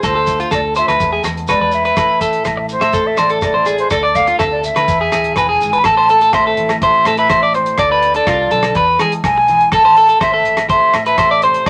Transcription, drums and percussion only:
0.03 kick medium
0.03 cross-stick medium
0.03 closed hi-hat soft
0.03 low agogo medium
0.03 shekere medium
0.27 kick medium
0.27 closed hi-hat soft
0.27 shekere medium
0.40 closed hi-hat soft
0.51 kick medium
0.51 cross-stick medium
0.51 closed hi-hat soft
0.51 low agogo medium
0.51 shekere medium
0.75 closed hi-hat soft
0.75 shekere medium
0.88 cross-stick medium
0.88 closed hi-hat soft
0.88 low agogo medium
1.00 kick medium
1.00 closed hi-hat soft
1.00 shekere medium
1.24 cross-stick medium
1.24 closed hi-hat soft
1.24 low agogo medium
1.24 shekere medium
1.37 closed hi-hat soft
1.47 kick medium
1.47 cross-stick medium
1.47 closed hi-hat soft
1.47 low agogo medium
1.47 shekere medium
1.72 closed hi-hat soft
1.72 shekere medium
1.85 closed hi-hat soft
1.97 kick medium
1.97 cross-stick medium
1.97 closed hi-hat soft
1.97 low agogo medium
1.97 shekere medium
2.21 kick medium
2.21 closed hi-hat soft
2.21 shekere medium
2.33 closed hi-hat soft
2.45 kick medium
2.45 cross-stick medium
2.45 closed hi-hat soft
2.45 low agogo medium
2.45 shekere medium
2.69 closed hi-hat soft
2.69 shekere medium
2.81 cross-stick medium
2.81 closed hi-hat soft
2.81 low agogo medium
2.93 kick medium
2.93 closed hi-hat soft
2.93 shekere medium
3.17 cross-stick medium
3.17 closed hi-hat soft
3.17 low agogo medium
3.17 shekere medium
3.30 closed hi-hat medium
3.41 kick medium
3.41 cross-stick medium
3.41 closed hi-hat soft
3.41 low agogo medium
3.41 shekere medium
3.66 closed hi-hat soft
3.66 shekere medium
3.78 closed hi-hat soft
3.90 kick medium
3.90 cross-stick medium
3.90 closed hi-hat medium
3.90 low agogo medium
3.90 shekere medium
4.15 kick medium
4.15 closed hi-hat soft
4.15 shekere medium
4.27 closed hi-hat soft
4.39 kick medium
4.39 cross-stick medium
4.39 closed hi-hat soft
4.39 low agogo medium
4.39 shekere medium
4.64 closed hi-hat soft
4.64 shekere medium
4.76 cross-stick medium
4.76 closed hi-hat soft
4.76 low agogo medium
4.88 kick medium
4.88 closed hi-hat soft
4.88 shekere medium
5.12 cross-stick medium
5.12 closed hi-hat soft
5.12 low agogo medium
5.12 shekere medium
5.24 closed hi-hat soft
5.36 kick medium
5.36 cross-stick medium
5.36 closed hi-hat soft
5.36 low agogo medium
5.36 shekere medium
5.60 closed hi-hat soft
5.60 shekere medium
5.73 closed hi-hat soft
5.84 kick medium
5.84 cross-stick medium
5.84 closed hi-hat soft
5.84 low agogo medium
6.09 closed hi-hat medium
6.21 closed hi-hat soft
6.33 kick medium
6.33 cross-stick medium
6.33 closed hi-hat soft
6.33 low agogo medium
6.57 closed hi-hat medium
6.69 cross-stick medium
6.69 closed hi-hat medium
6.69 low agogo medium
6.82 kick loud
6.82 closed hi-hat medium
7.05 cross-stick medium
7.05 closed hi-hat medium
7.05 low agogo medium
7.17 closed hi-hat medium
7.29 kick medium
7.29 cross-stick medium
7.29 closed hi-hat medium
7.29 low agogo medium
7.54 closed hi-hat soft
7.66 closed hi-hat soft
7.78 kick medium
7.78 cross-stick medium
7.78 closed hi-hat medium
7.78 low agogo medium
8.02 closed hi-hat medium
8.14 closed hi-hat medium
8.27 kick medium
8.27 cross-stick medium
8.27 closed hi-hat soft
8.27 low agogo medium
8.51 closed hi-hat medium
8.63 cross-stick medium
8.63 closed hi-hat soft
8.63 low agogo medium
8.75 kick loud
8.75 closed hi-hat medium
8.99 cross-stick medium
8.99 closed hi-hat medium
8.99 low agogo medium
9.12 closed hi-hat soft
9.24 kick medium
9.24 cross-stick medium
9.24 closed hi-hat soft
9.24 low agogo medium
9.48 closed hi-hat soft
9.60 closed hi-hat soft
9.72 kick loud
9.72 cross-stick medium
9.72 closed hi-hat medium
9.72 low agogo medium
9.96 closed hi-hat soft
10.09 closed hi-hat soft
10.20 kick medium
10.20 cross-stick medium
10.20 closed hi-hat soft
10.20 low agogo medium
10.45 closed hi-hat soft
10.57 cross-stick medium
10.57 closed hi-hat soft
10.57 low agogo medium
10.70 kick loud
10.70 closed hi-hat medium
10.94 cross-stick medium
10.94 closed hi-hat medium
10.94 low agogo medium
11.06 closed hi-hat medium
11.18 kick medium
11.18 cross-stick medium
11.18 closed hi-hat medium
11.18 low agogo medium
11.42 closed hi-hat medium
11.54 closed hi-hat medium
11.66 kick loud
11.66 cross-stick medium
11.66 closed hi-hat medium
11.66 low agogo medium

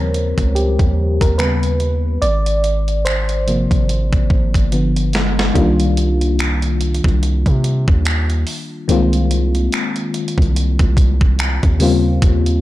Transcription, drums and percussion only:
0.14 closed hi-hat medium
0.38 kick medium
0.38 closed hi-hat soft
0.56 closed hi-hat medium
0.79 kick medium
0.79 closed hi-hat soft
1.21 kick medium
1.21 closed hi-hat medium
1.39 finger snap loud
1.39 closed hi-hat medium
1.63 closed hi-hat soft
1.80 closed hi-hat medium
2.22 closed hi-hat medium
2.46 closed hi-hat medium
2.64 closed hi-hat medium
2.88 closed hi-hat soft
3.06 finger snap loud
3.06 closed hi-hat medium
3.29 closed hi-hat medium
3.48 closed hi-hat medium
3.71 kick medium
3.71 closed hi-hat soft
3.89 closed hi-hat medium
4.13 kick medium
4.13 closed hi-hat soft
4.30 kick loud
4.54 kick medium
4.54 closed hi-hat medium
4.72 closed hi-hat medium
4.96 closed hi-hat medium
5.13 snare medium
5.13 closed hi-hat medium
5.39 snare medium
5.55 kick loud
5.55 closed hi-hat medium
5.80 closed hi-hat medium
5.97 closed hi-hat medium
6.21 closed hi-hat soft
6.39 finger snap loud
6.39 closed hi-hat medium
6.62 closed hi-hat medium
6.81 closed hi-hat medium
6.94 closed hi-hat medium
7.04 kick medium
7.08 closed hi-hat soft
7.23 closed hi-hat medium
7.46 kick medium
7.46 closed hi-hat soft
7.64 closed hi-hat medium
7.88 kick medium
8.05 finger snap loud
8.05 closed hi-hat medium
8.30 closed hi-hat medium
8.47 open hi-hat medium
8.89 closed hi-hat medium
9.13 closed hi-hat medium
9.31 closed hi-hat medium
9.55 closed hi-hat soft
9.72 finger snap loud
9.72 closed hi-hat medium
9.96 closed hi-hat medium
10.14 closed hi-hat medium
10.28 closed hi-hat medium
10.38 kick medium
10.42 closed hi-hat soft
10.56 closed hi-hat medium
10.79 kick medium
10.79 closed hi-hat soft
10.97 kick loud
10.97 closed hi-hat medium
11.21 kick medium
11.39 finger snap loud
11.39 closed hi-hat medium
11.63 kick loud
11.63 closed hi-hat medium
11.80 open hi-hat medium
12.22 kick loud
12.22 closed hi-hat medium
12.46 closed hi-hat medium

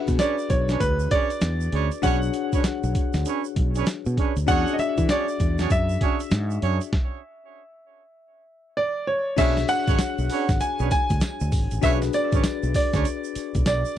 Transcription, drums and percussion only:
0.08 kick medium
0.08 closed hi-hat soft
0.08 shaker soft
0.19 snare loud
0.19 closed hi-hat medium
0.19 shaker medium
0.38 shaker soft
0.50 kick medium
0.50 closed hi-hat medium
0.50 shaker soft
0.69 snare medium
0.69 closed hi-hat soft
0.69 shaker medium
0.80 kick medium
0.80 closed hi-hat medium
0.80 shaker medium
1.00 shaker soft
1.11 kick medium
1.11 closed hi-hat medium
1.30 closed hi-hat medium
1.30 shaker medium
1.41 snare loud
1.41 closed hi-hat medium
1.41 shaker medium
1.61 shaker medium
1.72 closed hi-hat medium
1.91 closed hi-hat soft
1.91 shaker medium
2.03 kick loud
2.03 closed hi-hat medium
2.03 shaker medium
2.22 shaker medium
2.33 closed hi-hat medium
2.33 shaker soft
2.53 kick medium
2.53 closed hi-hat soft
2.53 shaker soft
2.64 snare loud
2.64 closed hi-hat medium
2.64 shaker medium
2.84 shaker soft
2.95 kick medium
2.95 closed hi-hat medium
2.95 shaker soft
3.13 snare medium
3.13 closed hi-hat soft
3.13 shaker medium
3.25 closed hi-hat medium
3.25 shaker medium
3.44 shaker medium
3.56 kick loud
3.56 closed hi-hat medium
3.75 closed hi-hat medium
3.75 shaker medium
3.86 snare loud
3.86 closed hi-hat medium
3.86 shaker medium
4.06 shaker medium
4.17 kick medium
4.17 closed hi-hat medium
4.36 closed hi-hat soft
4.36 shaker soft
4.48 kick loud
4.48 closed hi-hat medium
4.48 shaker medium
4.67 shaker medium
4.79 closed hi-hat medium
4.79 shaker soft
4.98 kick loud
4.98 closed hi-hat medium
4.98 shaker soft
5.09 snare loud
5.09 closed hi-hat medium
5.09 shaker medium
5.28 shaker soft
5.40 kick loud
5.40 closed hi-hat medium
5.40 shaker soft
5.59 snare medium
5.59 closed hi-hat soft
5.59 shaker medium
5.70 kick medium
5.70 closed hi-hat medium
5.70 shaker medium
5.89 shaker soft
6.01 kick loud
6.01 closed hi-hat medium
6.20 closed hi-hat medium
6.20 shaker medium
6.31 snare loud
6.31 closed hi-hat medium
6.31 shaker medium
6.51 shaker medium
6.62 closed hi-hat medium
6.81 closed hi-hat soft
6.81 shaker medium
6.93 kick loud
6.93 snare medium
9.38 kick loud
9.38 closed hi-hat medium
9.38 crash loud
9.38 tambourine medium
9.38 shaker medium
9.57 snare medium
9.57 shaker medium
9.68 closed hi-hat medium
9.68 tambourine medium
9.68 shaker medium
9.87 kick loud
9.87 closed hi-hat soft
9.87 shaker soft
9.99 snare loud
9.99 closed hi-hat medium
9.99 tambourine loud
9.99 shaker medium
10.18 shaker soft
10.29 open hi-hat medium
10.29 tambourine medium
10.29 shaker soft
10.49 kick medium
10.49 snare medium
10.49 closed hi-hat soft
10.49 shaker medium
10.60 closed hi-hat medium
10.60 shaker medium
10.79 shaker medium
10.91 kick loud
10.91 closed hi-hat medium
10.91 tambourine medium
10.91 shaker soft
11.10 kick loud
11.10 closed hi-hat medium
11.10 shaker medium
11.21 snare loud
11.21 closed hi-hat medium
11.21 tambourine loud
11.21 shaker medium
11.40 shaker medium
11.52 kick loud
11.52 open hi-hat medium
11.52 tambourine medium
11.52 shaker medium
11.71 closed hi-hat soft
11.71 shaker medium
11.83 kick loud
11.83 closed hi-hat medium
11.83 tambourine medium
11.83 shaker medium
12.02 snare medium
12.02 shaker medium
12.13 closed hi-hat medium
12.13 tambourine medium
12.13 shaker medium
12.32 kick loud
12.32 closed hi-hat soft
12.32 shaker medium
12.44 snare loud
12.44 closed hi-hat medium
12.44 tambourine loud
12.44 shaker medium
12.63 shaker soft
12.74 kick medium
12.74 open hi-hat medium
12.74 tambourine medium
12.74 shaker soft
12.93 kick loud
12.93 snare medium
12.93 closed hi-hat soft
12.93 shaker medium
13.05 closed hi-hat medium
13.05 shaker medium
13.24 shaker medium
13.35 closed hi-hat medium
13.35 tambourine medium
13.35 shaker medium
13.55 kick medium
13.55 closed hi-hat medium
13.55 shaker medium
13.66 snare loud
13.66 closed hi-hat medium
13.66 tambourine loud
13.66 shaker medium
13.85 shaker medium

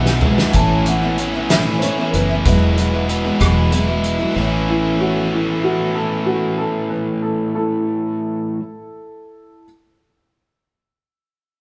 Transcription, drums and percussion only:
0.06 snare medium
0.21 floor tom medium
0.38 snare medium
0.53 kick medium
0.53 closed hi-hat medium
0.86 closed hi-hat medium
1.18 closed hi-hat soft
1.50 snare medium
1.50 closed hi-hat medium
1.82 closed hi-hat medium
2.14 closed hi-hat medium
2.45 kick medium
2.45 closed hi-hat medium
2.78 closed hi-hat medium
3.09 closed hi-hat soft
3.41 kick medium
3.41 cross-stick medium
3.41 closed hi-hat medium
3.72 closed hi-hat medium
4.04 closed hi-hat soft

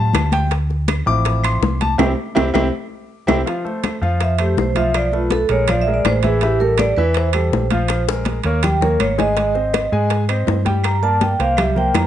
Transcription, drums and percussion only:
0.13 high bongo medium
0.13 low bongo medium
0.13 high conga medium
0.13 high timbale medium
0.13 claves medium
0.32 high bongo soft
0.32 high conga medium
0.32 high timbale medium
0.51 high bongo medium
0.51 high conga soft
0.51 high timbale medium
0.70 high bongo soft
0.70 high conga soft
0.88 high bongo medium
0.88 high conga medium
0.88 high timbale medium
0.88 claves medium
1.07 high bongo soft
1.07 high conga soft
1.25 high bongo medium
1.25 high conga soft
1.25 high timbale medium
1.44 high conga soft
1.44 high timbale medium
1.44 claves medium
1.63 high bongo medium
1.63 low bongo medium
1.63 high conga medium
1.81 high bongo soft
1.81 high conga loud
1.81 high timbale medium
1.99 low bongo loud
1.99 high conga loud
1.99 high timbale loud
1.99 claves loud
2.36 low bongo loud
2.36 high conga loud
2.36 high timbale loud
2.36 claves loud
2.54 low bongo loud
2.54 high conga loud
2.54 high timbale loud
2.54 claves loud
3.28 low bongo loud
3.28 high conga loud
3.28 high timbale loud
3.28 claves loud
3.47 high bongo medium
3.47 high conga soft
3.47 high timbale medium
3.66 high bongo soft
3.66 high conga soft
3.84 high bongo medium
3.84 high conga loud
3.84 high timbale medium
3.84 claves medium
4.03 high bongo soft
4.03 high conga soft
4.20 high bongo medium
4.20 high conga soft
4.20 high timbale medium
4.38 high conga soft
4.38 high timbale medium
4.38 claves medium
4.57 high bongo medium
4.57 low bongo medium
4.57 high conga medium
4.75 high bongo soft
4.75 high conga medium
4.75 high timbale medium
4.94 high bongo medium
4.94 high conga soft
4.94 high timbale medium
4.94 claves medium
5.12 high bongo soft
5.12 high conga soft
5.30 high bongo medium
5.30 high conga medium
5.30 high timbale medium
5.49 high bongo soft
5.49 high conga soft
5.49 high timbale medium
5.68 high bongo medium
5.68 high conga soft
5.68 low conga medium
5.68 high timbale loud
5.68 claves medium
5.88 high conga soft
6.05 high bongo medium
6.05 low bongo medium
6.05 high conga medium
6.05 high timbale loud
6.05 claves medium
6.23 high bongo soft
6.23 high conga medium
6.23 high timbale medium
6.41 high bongo medium
6.41 high conga soft
6.41 high timbale medium
6.61 high bongo soft
6.61 high conga soft
6.78 high bongo medium
6.78 high conga loud
6.78 high timbale medium
6.78 claves medium
6.98 high bongo soft
6.98 high conga soft
7.14 high bongo medium
7.14 high conga soft
7.14 high timbale medium
7.33 high conga soft
7.33 high timbale medium
7.33 claves medium
7.53 high bongo medium
7.53 low bongo medium
7.53 high conga medium
7.70 high bongo soft
7.70 high conga medium
7.70 high timbale medium
7.88 high bongo medium
7.88 high conga soft
7.88 high timbale medium
7.88 claves medium
8.08 high bongo loud
8.08 high conga soft
8.25 high conga loud
8.25 high timbale medium
8.44 high conga soft
8.44 high timbale medium
8.63 low bongo medium
8.63 high conga soft
8.63 low conga medium
8.63 high timbale loud
8.63 claves medium
8.82 low bongo medium
8.82 high conga soft
8.82 low conga medium
9.00 high conga medium
9.00 high timbale loud
9.00 claves medium
9.19 low bongo medium
9.19 high conga medium
9.19 high timbale medium
9.37 high bongo medium
9.37 high conga soft
9.37 high timbale medium
9.55 high bongo soft
9.55 high conga soft
9.74 high bongo medium
9.74 high conga medium
9.74 high timbale loud
9.74 claves medium
9.93 high bongo soft
9.93 high conga soft
10.10 high bongo medium
10.10 high conga soft
10.10 high timbale medium
10.29 high conga soft
10.29 high timbale medium
10.29 claves medium
10.47 high bongo medium
10.47 low bongo medium
10.47 high conga medium
10.47 low timbale medium
10.66 high bongo soft
10.66 high conga medium
10.66 high timbale medium
10.84 high bongo medium
10.84 high conga soft
10.84 high timbale medium
10.84 claves medium
11.03 high bongo soft
11.03 high conga soft
11.21 high bongo medium
11.21 high conga loud
11.21 high timbale medium
11.40 high bongo soft
11.40 high conga soft
11.40 high timbale medium
11.57 high bongo medium
11.57 high conga soft
11.57 low conga medium
11.57 high timbale loud
11.57 claves medium
11.76 high conga soft
11.76 low conga medium
11.94 high bongo medium
11.94 low bongo medium
11.94 high conga medium
11.94 high timbale loud
11.94 low timbale medium
11.94 claves medium

